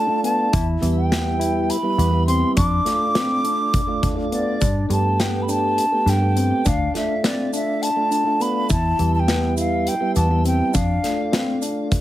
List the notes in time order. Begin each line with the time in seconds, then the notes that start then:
Already playing: D4 A5
0.08 A3 D4 F4
0.24 B3 A5, closed hi-hat
0.53 E2 E4, kick, closed hi-hat
0.81 E2 G3 B3 E4, closed hi-hat
0.97 G5
1.11 B3, snare, closed hi-hat
1.40 E4, closed hi-hat
1.70 B5, closed hi-hat
1.83 G3 B3 E4
1.98 E2 B3, closed hi-hat
2.12 G3 B3 E4
2.27 C4 C6, closed hi-hat
2.57 F2 D4 D6, kick, closed hi-hat
2.85 A3 D4 F4, snare, closed hi-hat
3.15 C4, snare, closed hi-hat
3.44 D4, closed hi-hat
3.74 kick, closed hi-hat
3.87 A3 D4 F4
4.03 D4, kick, closed hi-hat
4.16 A3 D4 F4
4.31 B3 D5, closed hi-hat
4.61 G2 D4, kick, closed hi-hat, shaker
4.89 G2 A3 B3 G4 A5, closed hi-hat
5.19 B3 G5, snare, closed hi-hat
5.42 B5
5.49 D4 A5, closed hi-hat, shaker
5.78 closed hi-hat
5.92 A3 B3 G4
6.06 G2 B3 G5, snare, closed hi-hat
6.21 A3 B3 G4
6.36 C4, closed hi-hat, shaker
6.65 D2 D4 F5, kick, closed hi-hat, shaker
6.94 A3 D4 F4 E5, snare, closed hi-hat
7.23 C4 D5, snare, closed hi-hat
7.53 D4 E5, closed hi-hat, shaker
7.82 A5, closed hi-hat
7.96 A3 D4 F4
8.11 D4, closed hi-hat, shaker
8.26 A3 D4 F4
8.40 B3 B5, closed hi-hat, shaker
8.70 E2 E4 A5, kick, closed hi-hat, shaker
8.98 E2 G3 B3 E4, closed hi-hat
9.15 A5
9.20 G5
9.28 B3, snare, closed hi-hat
9.57 E4 F5, closed hi-hat, shaker
9.87 G5, closed hi-hat
10.00 G3 B3 E4
10.16 E2 B3 A5, closed hi-hat, shaker
10.31 G3 B3 E4
10.45 C4 G5, closed hi-hat, shaker
10.74 F2 D4 F5, kick, closed hi-hat, shaker
11.04 A3 D4 F4, snare, closed hi-hat
11.32 C4, snare, closed hi-hat
11.62 D4, closed hi-hat, shaker
11.91 kick, closed hi-hat, shaker